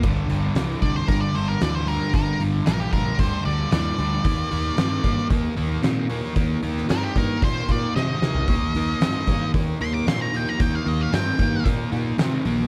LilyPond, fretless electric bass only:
\new Staff \with { instrumentName = "Fretless electric bass" } { \clef bass \time 4/4 \key g \minor \tempo 4 = 113 g,,8 g,,8 c,8 c,8 g,,8 g,,8 d,4 | g,,8 g,,8 bes,,8 bes,,8 d,8 d,8 ees,8 d,8 | ees,8 ees,8 g,8 g,8 ees,8 ees,8 bes,4 | ees,8 ees,8 g,8 g,8 bes,8 bes,8 c8 c8 |
ees,8 ees,8 g,8 g,8 ees,8 ees,8 bes,4 | ees,8 ees,8 g,8 g,8 bes,8 bes,8 c8 bes,,8 | }